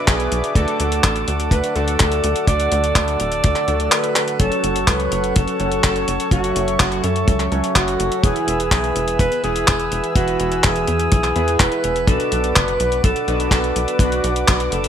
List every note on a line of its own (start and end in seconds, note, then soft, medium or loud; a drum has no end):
0.00 0.53 B2 medium
0.00 0.53 B3 medium
0.00 0.53 D4 medium
0.00 0.53 F#4 medium
0.00 0.52 B4 medium
0.00 0.53 B4 medium
0.00 4.36 D5 medium
0.00 0.54 E5 medium
0.00 2.44 D6 loud
0.08 0.29 B1 medium
0.08 0.57 G#4 medium
0.08 kick loud
0.08 clap loud
0.08 closed hi-hat medium
0.20 closed hi-hat soft
0.32 0.42 B1 loud
0.32 closed hi-hat medium
0.44 closed hi-hat soft
0.55 0.66 D2 loud
0.55 1.73 D3 medium
0.55 1.73 A3 medium
0.55 1.73 D4 medium
0.55 1.73 F#4 medium
0.55 1.73 A4 medium
0.55 8.20 A4 medium
0.55 1.03 A4 loud
0.55 4.36 F#5 medium
0.55 kick loud
0.55 closed hi-hat medium
0.68 closed hi-hat soft
0.80 1.01 D2 medium
0.80 closed hi-hat medium
0.92 closed hi-hat soft
1.04 1.25 A1 loud
1.04 1.48 A4 loud
1.04 kick loud
1.04 clap loud
1.04 closed hi-hat medium
1.16 closed hi-hat soft
1.28 1.49 D2 medium
1.28 closed hi-hat medium
1.40 closed hi-hat soft
1.51 1.62 D2 loud
1.51 1.77 B4 loud
1.51 kick loud
1.51 closed hi-hat medium
1.64 closed hi-hat soft
1.76 1.97 D2 medium
1.76 2.45 D3 medium
1.76 2.45 A3 medium
1.76 2.45 D4 medium
1.76 2.45 F#4 medium
1.76 2.47 A4 loud
1.76 2.45 A4 medium
1.76 closed hi-hat soft
1.88 closed hi-hat soft
2.00 2.21 D2 medium
2.00 kick loud
2.00 clap loud
2.00 closed hi-hat medium
2.12 closed hi-hat soft
2.24 2.34 D2 medium
2.24 closed hi-hat medium
2.36 closed hi-hat soft
2.47 2.69 D2 medium
2.47 3.65 D3 medium
2.47 3.65 A3 medium
2.47 3.65 D4 medium
2.47 3.65 F#4 medium
2.47 3.65 A4 medium
2.47 2.92 D5 loud
2.47 4.38 E6 loud
2.47 kick loud
2.47 closed hi-hat loud
2.60 closed hi-hat soft
2.72 2.93 D2 loud
2.72 closed hi-hat medium
2.84 closed hi-hat soft
2.95 3.17 D2 loud
2.95 kick loud
2.95 clap loud
2.95 closed hi-hat loud
3.08 closed hi-hat soft
3.20 3.41 D1 medium
3.20 closed hi-hat medium
3.32 closed hi-hat soft
3.44 3.55 D2 medium
3.44 kick loud
3.44 closed hi-hat medium
3.56 clap soft
3.56 closed hi-hat soft
3.68 3.89 D2 medium
3.68 4.37 D3 medium
3.68 4.37 A3 medium
3.68 4.37 D4 medium
3.68 4.37 F#4 medium
3.68 4.37 A4 medium
3.68 closed hi-hat soft
3.80 closed hi-hat soft
3.92 4.36 B4 loud
3.92 clap loud
3.92 closed hi-hat loud
4.04 closed hi-hat soft
4.16 clap medium
4.16 closed hi-hat medium
4.28 closed hi-hat soft
4.40 4.50 F#1 medium
4.40 5.57 F#3 medium
4.40 5.57 C#4 medium
4.40 5.57 F#4 medium
4.40 5.57 A4 medium
4.40 4.89 A4 loud
4.40 5.57 C#5 medium
4.40 8.20 C#5 medium
4.40 6.30 F#5 medium
4.40 8.20 C#6 medium
4.40 kick loud
4.40 closed hi-hat loud
4.52 closed hi-hat soft
4.64 4.85 F#1 medium
4.64 closed hi-hat medium
4.76 closed hi-hat soft
4.87 5.09 C#2 loud
4.87 5.37 B4 loud
4.87 kick loud
4.87 clap loud
4.87 closed hi-hat loud
5.00 closed hi-hat soft
5.12 5.33 F#1 medium
5.12 closed hi-hat medium
5.24 closed hi-hat soft
5.36 5.47 F#1 loud
5.36 5.83 A4 loud
5.36 kick loud
5.36 closed hi-hat medium
5.48 closed hi-hat soft
5.60 5.81 F#1 medium
5.60 6.29 F#3 medium
5.60 6.29 C#4 medium
5.60 6.29 F#4 medium
5.60 6.29 A4 medium
5.60 6.29 C#5 medium
5.60 closed hi-hat soft
5.72 closed hi-hat soft
5.84 6.05 F#1 medium
5.84 6.28 A4 medium
5.84 kick loud
5.84 clap loud
5.84 closed hi-hat medium
5.96 closed hi-hat soft
6.08 6.18 F#1 medium
6.08 closed hi-hat medium
6.20 closed hi-hat soft
6.31 6.53 F#1 medium
6.31 7.49 F#3 medium
6.31 7.49 C#4 medium
6.31 7.49 F#4 medium
6.31 6.67 F#4 medium
6.31 7.49 A4 medium
6.31 7.49 C#5 medium
6.31 12.04 E5 medium
6.31 kick loud
6.31 closed hi-hat medium
6.44 closed hi-hat soft
6.56 6.77 F#1 loud
6.56 closed hi-hat medium
6.68 closed hi-hat soft
6.80 7.01 F#1 loud
6.80 7.02 F#4 medium
6.80 kick loud
6.80 clap loud
6.80 closed hi-hat medium
6.92 closed hi-hat soft
7.04 7.25 F#2 medium
7.04 7.46 A4 medium
7.04 closed hi-hat medium
7.16 closed hi-hat soft
7.28 7.49 C#2 medium
7.28 kick loud
7.28 closed hi-hat medium
7.40 clap soft
7.40 closed hi-hat soft
7.52 7.62 C#2 loud
7.52 8.21 F#3 medium
7.52 8.21 C#4 medium
7.52 8.21 F#4 medium
7.52 8.21 A4 medium
7.52 8.21 C#5 medium
7.52 closed hi-hat soft
7.64 closed hi-hat soft
7.76 7.97 F#1 medium
7.76 8.25 F#4 medium
7.76 kick loud
7.76 clap loud
7.76 closed hi-hat medium
7.88 closed hi-hat soft
8.00 8.10 F#1 loud
8.00 closed hi-hat medium
8.12 closed hi-hat soft
8.24 8.34 E1 loud
8.24 9.41 E3 medium
8.24 9.41 B3 medium
8.24 9.41 E4 medium
8.24 9.41 G#4 medium
8.24 8.72 G#4 loud
8.24 9.41 B4 medium
8.24 12.04 B4 medium
8.24 12.04 G#5 medium
8.24 12.04 E6 medium
8.24 kick loud
8.24 closed hi-hat medium
8.36 closed hi-hat soft
8.47 8.69 E1 medium
8.47 closed hi-hat medium
8.60 closed hi-hat soft
8.71 8.93 B1 loud
8.71 9.17 G#4 loud
8.71 kick loud
8.71 clap loud
8.71 closed hi-hat medium
8.84 closed hi-hat soft
8.96 9.17 E1 medium
8.96 closed hi-hat medium
9.08 closed hi-hat soft
9.19 9.30 E1 loud
9.19 9.42 B4 loud
9.19 kick loud
9.19 closed hi-hat medium
9.32 closed hi-hat soft
9.44 9.65 E1 medium
9.44 10.13 E3 medium
9.44 10.13 B3 medium
9.44 10.13 E4 medium
9.44 10.12 G#4 loud
9.44 10.13 G#4 medium
9.44 10.13 B4 medium
9.44 closed hi-hat soft
9.56 closed hi-hat soft
9.68 9.89 E1 medium
9.68 kick loud
9.68 clap loud
9.68 closed hi-hat medium
9.80 closed hi-hat soft
9.92 10.02 E1 medium
9.92 closed hi-hat medium
10.04 closed hi-hat soft
10.16 10.37 E1 medium
10.16 11.33 E3 medium
10.16 11.33 B3 medium
10.16 11.33 E4 medium
10.16 10.65 F#4 loud
10.16 11.33 G#4 medium
10.16 11.33 B4 medium
10.16 kick loud
10.16 closed hi-hat medium
10.28 closed hi-hat soft
10.40 10.61 E1 loud
10.40 closed hi-hat medium
10.52 closed hi-hat soft
10.64 10.85 E1 loud
10.64 11.62 G#4 loud
10.64 kick loud
10.64 clap loud
10.64 closed hi-hat medium
10.76 closed hi-hat soft
10.88 11.09 E2 medium
10.88 closed hi-hat medium
11.00 closed hi-hat soft
11.12 11.33 B1 medium
11.12 kick loud
11.12 closed hi-hat medium
11.24 clap soft
11.24 closed hi-hat soft
11.36 11.57 E2 medium
11.36 12.05 E3 medium
11.36 12.05 B3 medium
11.36 12.05 E4 medium
11.36 12.05 G#4 medium
11.36 12.05 B4 medium
11.36 closed hi-hat soft
11.48 closed hi-hat soft
11.60 11.70 E1 medium
11.60 12.10 B4 loud
11.60 kick loud
11.60 clap loud
11.60 closed hi-hat medium
11.72 closed hi-hat soft
11.84 12.05 E1 medium
11.84 closed hi-hat medium
11.96 closed hi-hat soft
12.07 12.18 B1 loud
12.07 13.25 B2 medium
12.07 13.25 B3 medium
12.07 13.25 D4 medium
12.07 13.25 F#4 medium
12.07 12.58 A4 loud
12.07 14.88 B4 medium
12.07 13.25 B4 medium
12.07 14.88 D5 medium
12.07 14.88 F#5 medium
12.07 14.88 D6 medium
12.07 kick loud
12.07 closed hi-hat medium
12.20 closed hi-hat soft
12.32 12.53 B1 medium
12.32 closed hi-hat medium
12.44 closed hi-hat soft
12.56 12.77 F#1 loud
12.56 13.04 B4 loud
12.56 kick loud
12.56 clap loud
12.56 closed hi-hat medium
12.68 closed hi-hat soft
12.80 13.01 B1 medium
12.80 closed hi-hat medium
12.92 closed hi-hat soft
13.04 13.14 B1 loud
13.04 13.49 A4 loud
13.04 kick loud
13.04 closed hi-hat medium
13.16 closed hi-hat soft
13.28 13.49 B1 medium
13.28 13.97 B2 medium
13.28 13.97 B3 medium
13.28 13.97 D4 medium
13.28 13.97 F#4 medium
13.28 13.97 B4 medium
13.28 closed hi-hat soft
13.40 closed hi-hat soft
13.51 13.73 B1 medium
13.51 14.02 A4 loud
13.51 kick loud
13.51 clap loud
13.51 closed hi-hat medium
13.64 closed hi-hat soft
13.76 13.86 B1 medium
13.76 closed hi-hat medium
13.88 closed hi-hat soft
13.99 14.21 B1 medium
13.99 14.88 B2 medium
13.99 14.88 B3 medium
13.99 14.88 D4 medium
13.99 14.88 F#4 medium
13.99 14.34 F#4 medium
13.99 14.88 B4 medium
13.99 kick loud
13.99 closed hi-hat medium
14.12 closed hi-hat soft
14.24 14.45 B1 loud
14.24 closed hi-hat medium
14.36 closed hi-hat soft
14.48 14.69 B1 loud
14.48 14.74 F#4 medium
14.48 kick loud
14.48 clap loud
14.48 closed hi-hat medium
14.60 closed hi-hat soft
14.72 14.88 F#1 medium
14.72 14.88 A4 medium
14.72 closed hi-hat medium
14.84 closed hi-hat soft